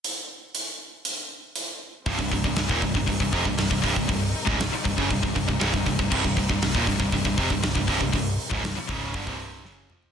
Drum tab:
CC |----------------|----------------|----------------|x---------------|
HH |x---x---x---x---|o-o-o-o-o-o-o-o-|o-o-o-o-o-o-o-o-|--o-o-o-o-o-o-o-|
SD |----------------|----o-------o---|----o-------oo--|----o-------o---|
T2 |----------------|----------------|----------------|----------------|
FT |----------------|----------------|----------------|----------------|
BD |----------------|oooo-ooooooo-ooo|o--o--oooooo-ooo|oooo-ooooooo-ooo|

CC |----------------|
HH |o-o-o---o-o-----|
SD |----o-------o---|
T2 |--------------o-|
FT |---------------o|
BD |o--o--o-oo------|